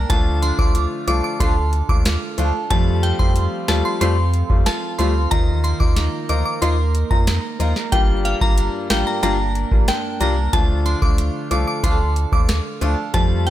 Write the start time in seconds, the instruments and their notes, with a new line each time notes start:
Already playing: steel-string acoustic guitar A#3 D4 A#4
0.09 sub bass D2, steel-string acoustic guitar D3, grand piano F3 A3 D4 F4, synth bell A5, kick, closed hi-hat
0.42 steel-string acoustic guitar D4, synth bell C6, closed hi-hat
0.58 sub bass D2, grand piano F3 A3 D4 F4, synth bell D6, kick
0.75 steel-string acoustic guitar F4, closed hi-hat
1.07 sub bass C2, grand piano F3 A3 D4 F4, steel-string acoustic guitar A4, synth bell D6, closed hi-hat
1.24 synth bell D6
1.40 sub bass D2, grand piano F3 A3 D4 F4, steel-string acoustic guitar D4 F4 A4, synth bell C6, kick, closed hi-hat
1.73 closed hi-hat
1.89 sub bass D#2, grand piano F3 A3 D4 F4, synth bell D6, kick
2.05 steel-string acoustic guitar F4, cross-stick, snare, closed hi-hat
2.38 sub bass D2, grand piano F3 A3 D4 F4, steel-string acoustic guitar D4 F4 A4, closed hi-hat
2.70 sub bass F2, steel-string acoustic guitar F3, grand piano G3 A3 C4 F4, synth bell A5, kick, closed hi-hat
3.03 steel-string acoustic guitar C4, synth bell G5, closed hi-hat
3.19 sub bass F2, grand piano G3 A3 C4 F4, synth bell C6, kick
3.36 steel-string acoustic guitar F4, closed hi-hat
3.68 sub bass D#2, grand piano G3 A3 C4 F4, steel-string acoustic guitar A4, synth bell A5, cross-stick, snare, closed hi-hat
3.85 synth bell C6
4.01 sub bass F2, grand piano G3 A3 C4 F4, steel-string acoustic guitar C4 F4 A4, synth bell C6, closed hi-hat
4.34 closed hi-hat
4.50 sub bass F2, grand piano G3 A3 C4 F4, kick
4.66 steel-string acoustic guitar F4, synth bell A5, cross-stick, snare, closed hi-hat
4.99 sub bass D2, grand piano G3 A3 C4 F4, steel-string acoustic guitar C4 F4 A4, synth bell C6, closed hi-hat
5.31 sub bass D#2, steel-string acoustic guitar D#3, grand piano F3 A#3 D#4 F4, synth bell A#5, kick, closed hi-hat
5.64 steel-string acoustic guitar A#3, synth bell C6, closed hi-hat
5.80 sub bass D#2, grand piano F3 A#3 D#4 F4, synth bell D6, kick
5.96 steel-string acoustic guitar D#4, snare, closed hi-hat
6.29 sub bass D2, grand piano F3 A#3 D#4 F4, steel-string acoustic guitar A#4, synth bell D6, closed hi-hat
6.45 synth bell D6
6.62 sub bass D#2, grand piano F3 A#3 D#4 F4, steel-string acoustic guitar A#3 D#4 A#4, synth bell C6, closed hi-hat
6.95 closed hi-hat
7.11 sub bass F2, grand piano F3 A#3 D#4 F4, synth bell A#5, kick
7.27 steel-string acoustic guitar D#4, cross-stick, snare, closed hi-hat
7.59 sub bass D#2, grand piano F3 A#3 D#4 F4, steel-string acoustic guitar A#3 D#4 A#4, closed hi-hat
7.76 snare
7.92 sub bass G1, steel-string acoustic guitar G2, grand piano G3 A#3 D4 F4, synth bell G5, kick, closed hi-hat
8.25 steel-string acoustic guitar A#3, synth bell F5, closed hi-hat
8.41 sub bass G1, grand piano G3 A#3 D4 F4, synth bell A#5, kick
8.58 steel-string acoustic guitar D4, closed hi-hat
8.90 sub bass A1, grand piano G3 A#3 D4 F4, steel-string acoustic guitar A#4, synth bell G5, cross-stick, snare, closed hi-hat
9.07 synth bell A#5
9.23 sub bass G1, grand piano G3 A#3 D4 F4, steel-string acoustic guitar A#3 D4 A#4, synth bell A#5, closed hi-hat
9.55 closed hi-hat
9.72 sub bass A#1, grand piano G3 A#3 D4 F4, kick
9.88 steel-string acoustic guitar D4, synth bell G5, cross-stick, snare, closed hi-hat
10.20 sub bass C2, grand piano G3 A#3 D4 F4, steel-string acoustic guitar A#3 D4 A#4, synth bell A#5, closed hi-hat
10.53 sub bass D2, steel-string acoustic guitar D3, grand piano F3 A3 D4 F4, synth bell A5, kick, closed hi-hat
10.86 steel-string acoustic guitar D4, synth bell C6, closed hi-hat
11.02 sub bass D2, grand piano F3 A3 D4 F4, synth bell D6, kick
11.18 steel-string acoustic guitar F4, closed hi-hat
11.51 sub bass C2, grand piano F3 A3 D4 F4, steel-string acoustic guitar A4, synth bell D6, closed hi-hat
11.67 synth bell D6
11.83 sub bass D2, grand piano F3 A3 D4 F4, steel-string acoustic guitar D4 F4 A4, synth bell C6, kick, closed hi-hat
12.16 closed hi-hat
12.32 sub bass D#2, grand piano F3 A3 D4 F4, synth bell D6, kick
12.49 steel-string acoustic guitar F4, cross-stick, snare, closed hi-hat
12.81 sub bass D2, grand piano F3 A3 D4 F4, steel-string acoustic guitar D4 F4 A4, closed hi-hat
13.14 sub bass F2, steel-string acoustic guitar F3, grand piano G3 A3 C4 F4, synth bell A5, kick, closed hi-hat
13.47 steel-string acoustic guitar C4, synth bell G5, closed hi-hat